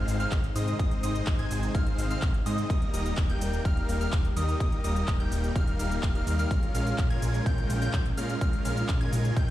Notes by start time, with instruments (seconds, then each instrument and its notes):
Already playing: analog synth pad C3 D#3 G#3 D#4, supersaw synth G#3 C4 D#4 C5 F5, digital synth lead F6, downlifter
0.08 analog synth bass G#1, open hi-hat, ride, shaker
0.20 supersaw synth G#3 C4 D#4 C5 F5, digital synth lead F6, closed hi-hat, shaker
0.32 analog synth bass G#1, kick, clap, closed hi-hat, ride, shaker
0.44 closed hi-hat
0.56 analog synth bass G#2, supersaw synth G#3 C4 D#4 C5 D#5, digital synth lead D#6, open hi-hat, ride, shaker
0.68 closed hi-hat, shaker
0.79 analog synth bass G#1, supersaw synth G#3 C4 D#4 C5 D#5, digital synth lead D#6, kick, closed hi-hat, ride, shaker
0.91 closed hi-hat
1.03 analog synth bass G#1, supersaw synth G#3 C4 D#4 C5 D#5, digital synth lead D#6, open hi-hat, ride, shaker
1.15 closed hi-hat, shaker
1.27 analog synth bass G#1, kick, clap, closed hi-hat, ride, shaker
1.39 supersaw synth G#3 C4 D#4 C5 G#5, digital synth lead G#6, closed hi-hat
1.51 analog synth bass G#1, open hi-hat, ride, shaker
1.63 closed hi-hat, shaker
1.75 analog synth bass G#1, supersaw synth G#3 C4 D#4 C5 F5, digital synth lead F6, kick, closed hi-hat, ride, shaker
1.87 closed hi-hat
1.98 analog synth bass G#1, open hi-hat, ride, shaker
2.10 supersaw synth G#3 C4 D#4 C5 F5, digital synth lead F6, closed hi-hat, shaker
2.22 analog synth bass G#1, kick, clap, closed hi-hat, ride, shaker
2.34 closed hi-hat
2.46 analog synth bass G#2, supersaw synth G#3 C4 D#4 C5 D#5, digital synth lead D#6, open hi-hat, ride, shaker
2.58 closed hi-hat, shaker
2.70 analog synth bass D#1, analog synth pad D#3 G3 A#3 G4, supersaw synth G3 A#3 D#4 A#4 D#5, digital synth lead D#6, kick, closed hi-hat, ride, shaker
2.82 closed hi-hat
2.94 analog synth bass D#1, supersaw synth G3 A#3 D#4 A#4 D#5, digital synth lead D#6, open hi-hat, ride, shaker
3.06 closed hi-hat, shaker
3.17 analog synth bass D#1, kick, clap, closed hi-hat, ride, shaker
3.29 supersaw synth G3 A#3 D#4 A#4 G5, digital synth lead G6, closed hi-hat
3.41 analog synth bass D#1, open hi-hat, ride, shaker
3.53 closed hi-hat, shaker
3.65 analog synth bass D#1, supersaw synth G3 A#3 D#4, digital synth lead F6, kick, closed hi-hat, ride, shaker
3.77 closed hi-hat
3.89 analog synth bass D#1, open hi-hat, ride, shaker
4.01 supersaw synth G3 A#3 D#4 A#4 F5, digital synth lead F6, closed hi-hat, shaker
4.13 analog synth bass D#1, kick, clap, closed hi-hat, ride, shaker
4.25 closed hi-hat
4.37 analog synth bass D#2, supersaw synth G3 A#3 D#4 A#4 D#5, digital synth lead D#6, open hi-hat, ride, shaker
4.48 closed hi-hat, shaker
4.60 analog synth bass D#1, supersaw synth G3 A#3 D#4 A#4 D#5, digital synth lead D#6, kick, closed hi-hat, ride, shaker
4.72 closed hi-hat
4.84 analog synth bass D#1, supersaw synth G3 A#3 D#4 A#4 D#5, digital synth lead D#6, open hi-hat, ride, shaker
4.96 closed hi-hat, shaker
5.08 analog synth bass D#1, kick, clap, closed hi-hat, ride, shaker
5.20 supersaw synth G3 A#3 D#4 A#4 G5, digital synth lead G6, closed hi-hat
5.32 analog synth bass D#1, open hi-hat, ride, shaker
5.44 closed hi-hat, shaker
5.56 analog synth bass D#1, supersaw synth G3 A#3 D#4 A#4 F5, digital synth lead F6, kick, closed hi-hat, ride, shaker
5.68 closed hi-hat
5.79 analog synth bass D#1, supersaw synth G3 A#3 D#4 A#4 F5, digital synth lead F6, open hi-hat, ride, shaker
5.91 closed hi-hat, shaker
6.03 analog synth bass D#1, kick, clap, closed hi-hat, ride, shaker
6.15 supersaw synth G3 A#3 D#4 A#4 F5, digital synth lead F6, closed hi-hat
6.27 analog synth bass D#2, open hi-hat, ride, shaker
6.39 supersaw synth G3 A#3 D#4 A#4 F5, digital synth lead F6, closed hi-hat, shaker
6.51 analog synth bass A#1, analog synth pad C#3 G#3 F4, supersaw synth G#3 C#4 F4 A#4 F5, digital synth lead F6, kick, closed hi-hat, ride, shaker
6.63 closed hi-hat
6.75 analog synth bass A#1, supersaw synth G#3 C#4 F4 A#4 F5, digital synth lead F6, open hi-hat, ride, shaker
6.87 closed hi-hat, shaker
6.98 analog synth bass A#1, kick, clap, closed hi-hat, ride, shaker
7.10 supersaw synth G#3 C#4 F4 A#4 G#5, digital synth lead G#6, closed hi-hat
7.22 analog synth bass A#1, open hi-hat, ride, shaker
7.34 closed hi-hat, shaker
7.46 analog synth bass A#1, supersaw synth G#3 C#4 F4 A#4 G5, digital synth lead G6, kick, closed hi-hat, ride, shaker
7.58 closed hi-hat
7.70 analog synth bass A#1, open hi-hat, ride, shaker
7.82 supersaw synth G#3 C#4 F4 A#4 G5, digital synth lead G6, closed hi-hat, shaker
7.93 analog synth bass A#1, kick, clap, closed hi-hat, ride, shaker
8.06 closed hi-hat
8.17 analog synth bass A#2, supersaw synth G#3 C#4 F4 A#4 F5, digital synth lead F6, open hi-hat, ride, shaker
8.29 closed hi-hat, shaker
8.41 analog synth bass A#1, supersaw synth G#3 C#4 F4 A#4 F5, analog synth pad D#4, digital synth lead F6, kick, closed hi-hat, ride, shaker
8.53 closed hi-hat
8.65 analog synth bass A#1, supersaw synth G#3 C#4 F4 A#4 F5, digital synth lead F6, open hi-hat, ride, shaker
8.77 closed hi-hat, shaker
8.89 analog synth bass A#1, kick, clap, closed hi-hat, ride, shaker
9.01 supersaw synth G#3 C#4 F4 A#4 G#5, digital synth lead G#6, closed hi-hat
9.13 analog synth bass A#1, open hi-hat, ride, shaker
9.25 closed hi-hat, shaker
9.36 analog synth bass A#1, supersaw synth G#3 C#4 F4 A#4 G5, digital synth lead G6, kick, closed hi-hat, ride, shaker